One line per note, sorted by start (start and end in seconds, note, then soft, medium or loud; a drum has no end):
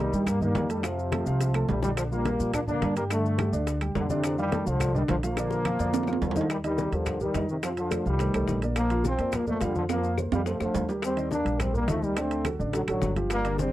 0.00 0.27 D#3 medium
0.00 0.27 G3 medium
0.00 0.11 A#3 medium
0.00 0.11 A#4 medium
0.00 0.11 A#5 medium
0.13 0.52 G2 medium
0.13 0.36 G3 medium
0.13 0.37 G4 medium
0.13 0.37 G5 medium
0.13 maracas medium
0.26 0.42 G3 medium
0.26 0.41 A#3 medium
0.26 high bongo medium
0.26 high conga soft
0.26 low conga medium
0.26 high timbale medium
0.26 claves medium
0.26 maracas medium
0.41 0.65 D#3 medium
0.41 0.68 G3 medium
0.41 0.68 A#3 medium
0.41 0.65 D#4 medium
0.41 0.65 D#5 medium
0.41 high conga soft
0.41 low conga medium
0.41 maracas soft
0.55 1.21 F2 medium
0.55 high bongo medium
0.55 low bongo medium
0.55 high conga medium
0.55 high timbale medium
0.55 low timbale medium
0.55 maracas soft
0.69 0.84 D#3 medium
0.69 0.84 G3 medium
0.69 0.81 A3 medium
0.69 0.82 A4 medium
0.69 0.82 A5 medium
0.69 high conga soft
0.69 high timbale medium
0.69 maracas medium
0.83 1.68 C3 medium
0.83 1.07 F3 medium
0.83 1.69 F3 loud
0.83 1.07 F4 medium
0.83 1.07 F5 medium
0.83 high bongo medium
0.83 high conga soft
0.83 high timbale medium
0.83 claves medium
0.83 maracas medium
0.98 high bongo soft
0.98 high conga soft
0.98 maracas soft
1.12 1.24 A3 medium
1.12 1.24 A4 medium
1.12 1.24 A5 medium
1.12 high bongo medium
1.12 high conga medium
1.12 high timbale medium
1.12 low timbale medium
1.12 claves medium
1.12 maracas soft
1.26 1.66 C2 medium
1.26 1.50 F3 medium
1.26 1.50 F4 medium
1.26 1.50 F5 medium
1.26 maracas medium
1.40 high bongo medium
1.40 high conga soft
1.40 high timbale medium
1.40 maracas medium
1.54 1.78 A3 medium
1.54 1.78 A4 medium
1.54 1.78 A5 medium
1.54 low bongo medium
1.54 high timbale medium
1.54 claves medium
1.54 maracas soft
1.68 2.34 A#1 medium
1.68 1.82 C3 medium
1.68 1.82 G3 medium
1.68 low bongo medium
1.68 high conga medium
1.68 low timbale medium
1.68 maracas soft
1.82 2.06 D3 medium
1.82 1.91 D#3 medium
1.82 1.90 G3 medium
1.82 2.07 D4 medium
1.82 2.07 D5 medium
1.82 low bongo medium
1.82 high conga medium
1.82 maracas medium
1.97 2.04 D3 medium
1.97 2.04 F3 medium
1.97 high bongo medium
1.97 high conga soft
1.97 high timbale medium
1.97 claves medium
1.97 maracas medium
2.11 2.23 F3 medium
2.11 2.51 G3 medium
2.11 2.51 A#3 loud
2.11 2.24 F4 medium
2.11 2.24 F5 medium
2.11 high conga soft
2.11 maracas soft
2.25 2.37 A#3 medium
2.25 2.37 A#4 medium
2.25 2.37 A#5 medium
2.25 high bongo medium
2.25 high conga medium
2.25 high timbale medium
2.25 low timbale medium
2.25 maracas soft
2.40 2.79 A#2 medium
2.40 2.63 F3 medium
2.40 2.63 F4 medium
2.40 2.63 F5 medium
2.40 maracas medium
2.53 2.61 A#3 medium
2.53 2.60 D4 medium
2.53 high bongo medium
2.53 high conga soft
2.53 low conga medium
2.53 high timbale medium
2.53 claves medium
2.53 maracas medium
2.68 2.92 D3 medium
2.68 2.95 A#3 medium
2.68 2.95 D4 loud
2.68 2.92 D4 medium
2.68 2.92 D5 medium
2.68 high conga soft
2.68 low conga medium
2.68 maracas soft
2.82 3.47 G2 medium
2.82 high bongo medium
2.82 low bongo medium
2.82 high conga medium
2.82 high timbale medium
2.82 low timbale medium
2.82 maracas soft
2.96 3.08 G3 medium
2.96 3.04 G3 medium
2.96 3.03 A#3 medium
2.96 3.08 G4 medium
2.96 3.08 G5 medium
2.96 high conga soft
2.96 high timbale medium
2.96 maracas medium
3.10 3.34 D3 medium
3.10 3.66 D3 medium
3.10 3.65 A3 loud
3.10 3.34 D4 medium
3.10 3.34 D5 medium
3.10 high bongo medium
3.10 high conga soft
3.10 high timbale loud
3.10 claves medium
3.10 maracas medium
3.24 high bongo soft
3.24 high conga soft
3.24 maracas soft
3.38 3.50 G3 medium
3.38 3.50 G4 medium
3.38 3.51 G5 medium
3.38 high bongo medium
3.38 high conga medium
3.38 high timbale medium
3.38 low timbale medium
3.38 claves medium
3.38 maracas soft
3.53 3.92 D2 medium
3.53 3.76 D3 medium
3.53 3.76 D4 medium
3.53 3.76 D5 medium
3.53 maracas medium
3.67 high bongo medium
3.67 high conga soft
3.67 high timbale medium
3.67 maracas medium
3.81 4.04 G3 medium
3.81 4.04 G4 medium
3.81 4.05 G5 medium
3.81 high bongo soft
3.81 high conga soft
3.81 high timbale medium
3.81 claves medium
3.81 maracas soft
3.95 4.61 F2 medium
3.95 4.10 A#2 medium
3.95 4.10 D3 medium
3.95 high bongo medium
3.95 low bongo medium
3.95 high conga medium
3.95 low timbale medium
3.95 maracas soft
4.10 4.38 A2 medium
4.10 4.39 C3 medium
4.10 4.33 D3 loud
4.10 4.33 D4 medium
4.10 4.33 D5 medium
4.10 high bongo soft
4.10 high conga medium
4.10 maracas medium
4.24 high bongo medium
4.24 high conga soft
4.24 high timbale medium
4.24 claves medium
4.24 maracas medium
4.38 4.65 D#3 medium
4.38 4.50 F3 medium
4.38 4.65 G3 loud
4.38 4.50 F4 medium
4.38 4.50 F5 medium
4.38 high conga soft
4.38 maracas soft
4.52 4.64 A3 medium
4.52 4.64 A4 medium
4.52 4.65 A5 medium
4.52 high bongo medium
4.52 high conga loud
4.52 high timbale medium
4.52 low timbale medium
4.52 maracas soft
4.66 5.06 C2 medium
4.66 4.95 D3 medium
4.66 4.89 F3 medium
4.66 4.95 F3 loud
4.66 4.89 F4 medium
4.66 4.90 F5 medium
4.66 maracas medium
4.80 high bongo medium
4.80 high conga soft
4.80 low conga medium
4.80 high timbale medium
4.80 claves medium
4.80 maracas medium
4.94 5.17 D3 medium
4.94 5.01 D#3 medium
4.94 5.01 G3 medium
4.94 5.18 D4 medium
4.94 5.18 D5 medium
4.94 high conga soft
4.94 low conga medium
4.94 maracas soft
5.08 5.74 A#1 medium
5.08 5.16 D3 medium
5.08 5.16 F3 loud
5.08 high bongo medium
5.08 low bongo medium
5.08 high conga medium
5.08 high timbale medium
5.08 low timbale medium
5.08 maracas soft
5.23 6.18 F3 medium
5.23 5.35 F3 medium
5.23 6.18 A#3 loud
5.23 5.35 F4 medium
5.23 5.35 F5 medium
5.23 high conga soft
5.23 high timbale medium
5.23 maracas medium
5.37 5.60 D3 medium
5.37 5.60 D4 medium
5.37 5.61 D5 medium
5.37 high bongo loud
5.37 high conga soft
5.37 high timbale medium
5.37 claves medium
5.37 maracas medium
5.51 high bongo medium
5.51 high conga soft
5.51 maracas soft
5.65 5.77 F3 medium
5.65 5.77 F4 medium
5.65 5.77 F5 medium
5.65 high conga medium
5.65 high timbale medium
5.65 low timbale medium
5.65 claves medium
5.65 maracas soft
5.79 6.19 F2 medium
5.79 6.03 D3 medium
5.79 6.03 D4 medium
5.79 6.03 D5 medium
5.79 low bongo loud
5.79 maracas medium
5.94 low bongo medium
5.94 high conga soft
5.94 high timbale medium
5.94 maracas medium
6.03 high timbale medium
6.07 6.31 F3 medium
6.07 6.31 F4 medium
6.07 6.31 F5 medium
6.07 low bongo medium
6.07 high conga soft
6.07 claves medium
6.07 maracas soft
6.13 high timbale medium
6.22 6.87 D#2 medium
6.22 6.49 D3 medium
6.22 6.49 F3 medium
6.22 low bongo medium
6.22 high conga medium
6.22 low timbale loud
6.22 maracas soft
6.31 low timbale medium
6.36 6.48 D#3 medium
6.36 6.48 D#4 medium
6.36 6.48 D#5 medium
6.36 low bongo medium
6.36 high conga medium
6.36 maracas medium
6.41 low timbale medium
6.50 6.57 D#3 medium
6.50 6.57 G3 medium
6.50 high bongo medium
6.50 high conga soft
6.50 high timbale medium
6.50 claves medium
6.50 maracas medium
6.64 6.87 D#3 medium
6.64 6.91 D#3 medium
6.64 6.91 G3 medium
6.64 6.87 D#4 medium
6.64 6.88 D#5 medium
6.64 high conga soft
6.64 high timbale medium
6.64 maracas soft
6.78 high bongo medium
6.78 high conga medium
6.78 maracas medium
6.92 7.32 D#2 medium
6.92 7.22 D3 medium
6.92 7.22 F3 medium
6.92 7.15 G3 medium
6.92 7.16 G4 medium
6.92 7.16 A#4 medium
6.92 high timbale medium
6.92 maracas soft
7.06 high bongo medium
7.06 high conga soft
7.06 low conga medium
7.06 high timbale medium
7.06 claves medium
7.06 maracas medium
7.20 7.47 D#3 medium
7.20 7.32 G3 medium
7.20 7.48 G3 medium
7.20 7.33 G4 medium
7.20 7.33 A#4 medium
7.20 high conga soft
7.20 low conga medium
7.20 maracas soft
7.34 8.00 F2 medium
7.34 7.58 D#3 medium
7.34 7.58 D#4 medium
7.34 7.58 D#5 medium
7.34 high bongo medium
7.34 low bongo medium
7.34 high conga medium
7.34 high timbale medium
7.34 low timbale medium
7.34 maracas medium
7.49 7.56 C3 medium
7.49 7.56 D#3 medium
7.49 maracas soft
7.63 7.70 C3 medium
7.63 7.86 F3 medium
7.63 7.70 F3 medium
7.63 7.87 F4 medium
7.63 7.87 F5 medium
7.63 high bongo medium
7.63 high conga soft
7.63 high timbale medium
7.63 claves medium
7.63 maracas medium
7.77 8.04 D3 medium
7.77 8.04 F3 medium
7.77 high bongo soft
7.77 high conga soft
7.77 high timbale medium
7.77 maracas soft
7.91 8.03 A3 medium
7.91 8.03 A4 medium
7.91 8.03 C5 medium
7.91 high bongo medium
7.91 high conga medium
7.91 high timbale medium
7.91 claves medium
7.91 maracas medium
8.05 8.32 C2 medium
8.05 8.59 D#3 medium
8.05 8.18 F3 medium
8.05 8.59 G3 medium
8.05 8.18 F4 medium
8.05 8.18 F5 medium
8.05 high conga soft
8.05 maracas soft
8.19 8.32 A3 medium
8.19 8.32 A4 medium
8.19 8.32 C5 medium
8.19 high bongo medium
8.19 high timbale medium
8.19 maracas medium
8.33 8.47 C2 medium
8.33 8.57 A3 medium
8.33 8.58 A4 medium
8.33 8.58 C5 medium
8.33 high bongo soft
8.33 high conga soft
8.33 high timbale medium
8.33 claves medium
8.33 maracas soft
8.48 9.14 A#1 medium
8.48 high bongo medium
8.48 low bongo medium
8.48 high conga medium
8.48 maracas medium
8.62 8.86 A#3 medium
8.62 8.86 A#4 medium
8.62 8.86 D5 medium
8.62 high bongo soft
8.62 high timbale medium
8.62 maracas soft
8.76 9.03 F3 medium
8.76 9.03 A#3 medium
8.76 high bongo medium
8.76 high conga soft
8.76 high timbale loud
8.76 claves medium
8.76 maracas medium
8.90 9.14 F3 medium
8.90 9.14 F4 medium
8.90 9.14 F5 medium
8.90 high conga soft
8.90 high timbale medium
8.90 maracas soft
9.04 9.32 F3 medium
9.04 9.32 C4 medium
9.04 high bongo medium
9.04 high conga medium
9.04 maracas medium
9.18 9.58 F2 medium
9.18 9.42 A#3 medium
9.18 9.43 A#4 medium
9.18 9.43 D5 medium
9.18 high timbale medium
9.18 maracas soft
9.32 9.47 F3 medium
9.32 9.48 A#3 medium
9.32 high bongo medium
9.32 high conga soft
9.32 low conga medium
9.32 high timbale medium
9.32 claves medium
9.32 maracas medium
9.47 9.61 F3 medium
9.47 9.61 A3 medium
9.47 9.59 A#3 medium
9.47 9.59 A#4 medium
9.47 9.59 D5 medium
9.47 high conga soft
9.47 low conga medium
9.47 maracas soft
9.61 10.27 F2 medium
9.61 9.75 D3 medium
9.61 9.85 F3 medium
9.61 9.76 G3 medium
9.61 9.85 F4 medium
9.61 9.85 F5 medium
9.61 high bongo medium
9.61 low bongo medium
9.61 high conga medium
9.61 high timbale medium
9.61 maracas medium
9.75 9.82 D3 medium
9.75 9.83 F3 medium
9.75 high conga medium
9.75 maracas soft
9.89 10.16 F3 medium
9.89 10.13 F3 medium
9.89 10.16 A#3 loud
9.89 10.13 F4 medium
9.89 10.13 F5 medium
9.89 high bongo medium
9.89 high conga soft
9.89 high timbale medium
9.89 claves medium
9.89 maracas medium
10.03 high bongo soft
10.03 high conga soft
10.03 maracas soft
10.18 10.30 A#3 medium
10.18 10.30 A#4 medium
10.18 10.30 C5 medium
10.18 high bongo medium
10.18 high conga medium
10.18 claves medium
10.18 maracas medium
10.32 10.59 F2 medium
10.32 10.40 D#3 medium
10.32 10.44 F3 medium
10.32 10.40 G3 medium
10.32 10.44 F4 medium
10.32 10.44 F5 medium
10.32 high timbale medium
10.32 maracas soft
10.46 10.60 C3 medium
10.46 10.60 F3 medium
10.46 10.58 A3 medium
10.46 10.58 A4 medium
10.46 10.58 C5 medium
10.46 high bongo medium
10.46 high conga soft
10.46 low timbale medium
10.46 maracas medium
10.60 10.74 F2 medium
10.60 10.87 D3 medium
10.60 10.88 F3 medium
10.60 10.84 A3 medium
10.60 10.84 A4 medium
10.60 10.84 C5 medium
10.60 high bongo medium
10.60 high conga soft
10.60 claves medium
10.60 maracas soft
10.74 11.40 D#2 medium
10.74 low bongo medium
10.74 high conga medium
10.74 low timbale loud
10.74 maracas medium
10.88 11.12 G3 medium
10.88 11.12 G4 medium
10.88 11.12 A#4 medium
10.88 low bongo medium
10.88 low timbale medium
10.88 maracas soft
11.02 11.30 G3 medium
11.02 11.30 C4 medium
11.02 high bongo medium
11.02 high conga soft
11.02 high timbale medium
11.02 claves medium
11.02 maracas medium
11.16 11.40 D#3 medium
11.16 11.40 D#4 medium
11.16 11.41 D#5 medium
11.16 high conga soft
11.16 high timbale medium
11.16 maracas soft
11.31 11.59 A#3 medium
11.31 11.59 D4 loud
11.31 high bongo medium
11.31 high conga medium
11.31 maracas medium
11.44 11.85 A#1 medium
11.44 11.68 G3 medium
11.44 11.69 G4 medium
11.44 11.69 A#4 medium
11.44 high timbale medium
11.44 maracas soft
11.60 11.75 G3 medium
11.60 11.75 C4 medium
11.60 high bongo medium
11.60 high conga soft
11.60 low conga medium
11.60 high timbale medium
11.60 claves medium
11.60 maracas medium
11.73 11.85 G3 medium
11.73 11.89 G3 medium
11.73 11.88 A#3 loud
11.73 11.85 G4 medium
11.73 11.86 A#4 medium
11.73 high conga soft
11.73 low conga medium
11.73 maracas soft
11.88 12.54 D2 medium
11.88 12.11 D#3 medium
11.88 12.02 F3 medium
11.88 12.02 A3 medium
11.88 12.11 D#4 medium
11.88 12.11 D#5 medium
11.88 high bongo medium
11.88 low bongo medium
11.88 high conga medium
11.88 high timbale medium
11.88 maracas medium
12.02 12.18 D#3 medium
12.02 12.18 G3 medium
12.02 high conga medium
12.02 maracas soft
12.17 12.40 D3 medium
12.17 12.46 A3 medium
12.17 12.46 C4 medium
12.17 12.40 D4 medium
12.17 12.40 D5 medium
12.17 high bongo medium
12.17 high timbale loud
12.17 claves medium
12.17 maracas medium
12.31 high bongo soft
12.31 high conga soft
12.31 high timbale medium
12.31 maracas soft
12.44 12.56 F#3 medium
12.44 12.57 F#4 medium
12.44 12.57 A4 medium
12.44 high bongo medium
12.44 high conga medium
12.44 high timbale medium
12.44 claves medium
12.44 maracas medium
12.59 12.86 A1 medium
12.59 12.71 D3 medium
12.59 12.71 D4 medium
12.59 12.71 D5 medium
12.59 high conga soft
12.59 maracas soft
12.73 12.80 D3 medium
12.73 12.86 F#3 medium
12.73 12.80 F#3 medium
12.73 12.86 F#4 medium
12.73 12.86 A4 medium
12.73 high bongo medium
12.73 high conga soft
12.73 high timbale medium
12.73 maracas medium
12.87 13.01 A1 medium
12.87 13.15 D3 medium
12.87 13.11 F#3 medium
12.87 13.15 F#3 medium
12.87 13.11 F#4 medium
12.87 13.11 A4 medium
12.87 high bongo soft
12.87 high conga soft
12.87 high timbale medium
12.87 claves medium
12.87 maracas soft
13.02 13.68 G1 medium
13.02 high bongo medium
13.02 low bongo medium
13.02 high conga medium
13.02 maracas medium
13.15 13.40 F3 medium
13.15 13.40 F4 medium
13.15 13.40 G4 medium
13.15 high bongo soft
13.15 high conga medium
13.15 high timbale medium
13.15 maracas soft
13.30 13.58 G3 medium
13.30 13.58 A#3 loud
13.30 high bongo medium
13.30 high conga soft
13.30 high timbale loud
13.30 claves medium
13.30 maracas medium
13.44 13.68 D3 medium
13.44 13.68 D4 medium
13.44 13.68 D5 medium
13.44 high conga soft
13.44 high timbale medium
13.44 maracas soft
13.58 13.72 G3 medium
13.58 13.72 C4 loud
13.58 high bongo medium
13.58 high conga loud
13.58 maracas medium